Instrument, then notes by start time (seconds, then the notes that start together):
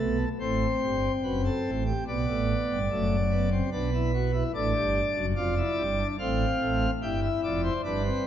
pipe organ
Already playing: A3 A4
0.00 B1 B2
0.40 A1 A2 C4 C5
0.82 G1 G2
1.23 F#1 F#2 B4
1.45 A4
1.66 A1 A2
1.86 G4
2.07 B1 B2 B3 D5
2.28 A1 A2
2.70 G1 G2
2.90 F#1 F#2 A3
3.31 B3
3.51 C4
3.72 B1 B2 D4 B4
3.93 E4
4.13 F#4
4.33 E4
4.54 A1 A2 D4 D5
4.74 G1 G2
5.15 F#1 F#2
5.36 F1 F2 F4 D5
5.57 E4
5.78 G1 G2
5.98 D4
6.19 A1 A2 C4 F5
6.61 A1 A2
7.02 G1 G2 E4 G5
7.23 E5
7.44 F1 F2 D5
7.63 C5
7.84 G1 G2 D4 B4
8.04 C4